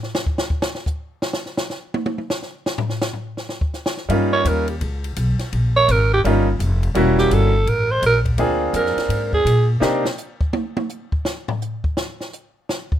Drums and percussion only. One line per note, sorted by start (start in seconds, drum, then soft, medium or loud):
0.03 snare soft
0.15 snare medium
0.15 hi-hat pedal medium
0.26 kick medium
0.38 snare loud
0.50 kick medium
0.62 snare loud
0.75 snare soft
0.86 kick medium
0.86 hi-hat pedal medium
1.22 snare medium
1.33 snare medium
1.46 snare soft
1.57 snare loud
1.57 hi-hat pedal medium
1.70 snare medium
1.94 high tom medium
2.06 high tom medium
2.18 high tom medium
2.30 snare loud
2.30 hi-hat pedal medium
2.42 snare soft
2.66 snare loud
2.78 floor tom loud
2.90 snare soft
3.02 snare loud
3.02 hi-hat pedal medium
3.13 floor tom soft
3.37 snare medium
3.49 snare medium
3.61 kick medium
3.74 snare soft
3.74 hi-hat pedal medium
3.86 snare loud
3.97 snare soft
4.10 ride medium
4.45 hi-hat pedal medium
4.45 ride medium
4.68 ride soft
4.81 ride medium
5.04 ride medium
5.16 hi-hat pedal medium
5.16 ride medium
5.39 snare soft
5.39 ride soft
5.53 ride medium
5.89 hi-hat pedal medium
5.89 ride medium
6.25 ride medium
6.60 hi-hat pedal medium
6.60 ride medium
6.83 ride medium
6.95 ride medium
7.18 snare medium
7.31 hi-hat pedal medium
7.31 ride medium
7.67 ride medium
8.03 hi-hat pedal medium
8.03 ride medium
8.25 kick medium
8.25 ride soft
8.38 ride medium
8.74 hi-hat pedal medium
8.74 ride medium
8.86 snare soft
8.98 snare medium
8.98 ride medium
9.10 ride medium
9.33 kick medium
9.47 hi-hat pedal medium
9.47 ride medium
9.82 snare medium
10.05 snare medium
10.18 hi-hat pedal medium
10.41 kick medium
10.53 high tom loud
10.77 high tom loud
10.89 hi-hat pedal medium
11.12 kick medium
11.25 snare loud
11.48 floor tom loud
11.62 hi-hat pedal medium
11.84 kick medium
11.97 snare loud
12.21 snare soft
12.33 hi-hat pedal medium
12.69 snare loud
12.92 kick medium